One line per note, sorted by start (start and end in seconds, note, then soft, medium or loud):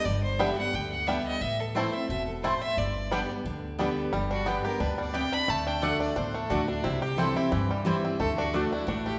0.05 0.48 G1 loud
0.05 0.71 G2 medium
0.05 0.23 D5 loud
0.24 0.42 C5 medium
0.39 0.57 D3 medium
0.39 0.48 G3 medium
0.39 0.57 G3 medium
0.39 0.49 B3 loud
0.39 0.48 B3 medium
0.39 0.58 B3 medium
0.39 0.48 D4 medium
0.39 0.49 G4 medium
0.39 0.56 G4 medium
0.39 0.49 D5 medium
0.39 0.58 E5 medium
0.39 0.49 G5 loud
0.57 0.74 B3 soft
0.57 0.73 G4 medium
0.57 0.76 F#5 loud
0.73 1.17 D2 medium
0.73 1.05 D3 medium
0.73 0.92 G5 medium
0.92 1.09 F#5 medium
1.06 1.39 D3 medium
1.06 1.40 G3 medium
1.06 1.16 G3 medium
1.06 1.17 B3 medium
1.06 1.40 B3 loud
1.06 1.16 B3 medium
1.06 1.16 D4 medium
1.06 1.17 G4 medium
1.06 1.41 G4 loud
1.06 1.17 D5 medium
1.06 1.26 E5 medium
1.06 1.17 G5 medium
1.26 1.43 D#5 loud
1.41 1.84 A1 medium
1.41 2.06 A2 medium
1.41 1.62 E5 loud
1.60 1.76 A4 medium
1.75 1.93 E3 medium
1.75 1.93 A3 medium
1.75 1.84 A3 medium
1.75 1.85 C4 medium
1.75 1.93 C4 medium
1.75 1.84 C4 medium
1.75 1.85 E4 medium
1.75 1.93 E4 medium
1.75 1.84 E4 medium
1.75 1.95 C5 medium
1.75 1.85 C5 loud
1.75 1.85 A5 loud
1.93 2.10 C4 soft
1.93 2.09 E4 medium
1.93 2.09 E5 medium
2.09 2.52 E1 medium
2.09 2.42 B2 medium
2.09 2.26 E5 medium
2.28 2.44 A4 medium
2.43 2.76 A2 medium
2.43 2.52 A3 medium
2.43 2.53 C4 medium
2.43 2.52 C4 medium
2.43 2.53 E4 medium
2.43 2.52 E4 medium
2.43 2.63 C5 medium
2.43 2.53 C5 medium
2.43 2.54 A5 loud
2.62 2.80 E5 loud
2.77 3.20 G1 medium
2.77 3.43 G2 medium
2.77 3.30 D5 medium
3.11 3.29 D3 medium
3.11 3.19 G3 medium
3.11 3.29 G3 medium
3.11 3.21 B3 medium
3.11 3.20 B3 medium
3.11 3.30 B3 medium
3.11 3.20 D4 medium
3.11 3.21 G4 medium
3.11 3.28 G4 medium
3.11 3.21 D5 medium
3.11 3.21 G5 loud
3.29 3.46 B3 soft
3.29 3.45 G4 medium
3.45 3.88 D2 medium
3.45 3.77 D3 medium
3.79 4.11 D3 medium
3.79 4.12 G3 medium
3.79 3.87 G3 medium
3.79 3.89 B3 medium
3.79 3.88 B3 medium
3.79 4.12 B3 medium
3.79 3.88 D4 medium
3.79 3.89 G4 medium
3.79 4.12 G4 loud
3.79 3.89 D5 medium
3.79 3.89 G5 medium
4.13 4.56 G1 medium
4.13 4.78 G2 medium
4.13 4.61 G3 medium
4.31 4.80 D4 medium
4.31 4.49 F#4 medium
4.46 4.64 D3 medium
4.46 4.64 G3 medium
4.46 4.56 B3 medium
4.46 4.95 B3 medium
4.46 4.64 B3 medium
4.46 4.56 G4 medium
4.46 4.64 G4 medium
4.46 4.63 G4 medium
4.46 4.56 D5 loud
4.46 4.57 G5 medium
4.64 4.81 B3 soft
4.64 4.80 G4 medium
4.64 5.11 G4 medium
4.64 4.83 A#4 medium
4.80 5.23 D2 medium
4.80 5.13 B2 medium
4.80 5.29 D4 medium
4.80 4.99 B4 medium
4.98 5.45 G3 medium
4.98 5.16 D5 medium
5.14 5.47 C3 medium
5.14 5.24 B3 medium
5.14 5.48 G4 medium
5.14 5.24 G4 medium
5.14 5.24 D5 loud
5.14 5.35 G5 loud
5.14 5.25 G5 medium
5.33 5.49 D4 medium
5.33 5.51 B5 loud
5.48 5.91 D2 medium
5.48 5.81 D3 medium
5.48 5.82 A3 medium
5.48 5.69 A5 loud
5.67 5.99 D4 medium
5.67 5.85 G5 medium
5.82 6.15 D3 loud
5.82 5.92 A3 loud
5.82 6.15 A3 medium
5.82 6.31 A3 medium
5.82 6.15 D4 medium
5.82 5.92 F#4 medium
5.82 6.15 F#4 loud
5.82 5.92 D5 loud
5.82 6.01 F#5 loud
5.82 5.92 A5 medium
6.00 6.15 D4 medium
6.00 6.19 D5 medium
6.16 6.45 E2 medium
6.16 6.81 A2 loud
6.16 6.49 D4 medium
6.16 6.37 C5 medium
6.34 6.81 A3 medium
6.34 6.52 A4 medium
6.50 6.79 D2 medium
6.50 6.68 D3 medium
6.50 6.60 A3 medium
6.50 6.68 A3 medium
6.50 6.67 D4 medium
6.50 6.68 D4 loud
6.50 6.60 F#4 loud
6.50 6.68 F#4 medium
6.50 6.66 F#4 loud
6.50 6.60 D5 medium
6.50 6.60 A5 loud
6.68 6.84 D4 medium
6.68 6.85 D4 medium
6.68 6.84 D4 medium
6.68 6.83 F#4 medium
6.84 7.27 C2 medium
6.84 7.49 C3 medium
6.84 7.17 C4 medium
6.84 7.02 E4 medium
7.02 7.49 G4 medium
7.02 7.20 G4 medium
7.17 7.35 E3 medium
7.17 7.35 G3 medium
7.17 7.28 C4 medium
7.17 7.36 C4 medium
7.17 7.67 C4 medium
7.17 7.28 E4 medium
7.17 7.34 E4 loud
7.17 7.38 A4 loud
7.17 7.28 C5 medium
7.17 7.28 G5 medium
7.35 7.52 C4 soft
7.35 7.51 E4 medium
7.35 7.83 E4 medium
7.35 7.86 G4 medium
7.52 8.17 G2 loud
7.52 7.95 G2 medium
7.52 8.00 E3 medium
7.71 8.17 G3 medium
7.85 8.18 E3 loud
7.85 8.18 G3 medium
7.85 8.18 C4 loud
7.85 7.96 C4 medium
7.85 8.20 E4 medium
7.85 7.96 E4 medium
7.85 8.19 E4 loud
7.85 7.96 C5 medium
7.85 7.96 G5 medium
8.05 8.20 C4 medium
8.20 8.63 D2 medium
8.20 8.53 D3 medium
8.20 8.53 A3 medium
8.20 8.37 A4 medium
8.38 8.72 D4 medium
8.38 8.55 F#4 medium
8.53 8.71 D3 medium
8.53 8.63 A3 medium
8.53 8.71 A3 medium
8.53 9.02 A3 medium
8.53 8.72 D4 medium
8.53 8.63 F#4 medium
8.53 8.70 F#4 medium
8.53 8.63 D5 loud
8.53 8.64 A5 medium
8.72 8.87 D4 medium
8.72 8.88 D4 soft
8.72 8.89 E4 medium
8.72 8.87 F#4 medium
8.87 9.19 A1 medium
8.87 9.19 A2 medium
8.87 9.19 D4 medium
8.87 9.04 F#4 medium
9.05 9.19 A3 medium
9.05 9.19 G4 medium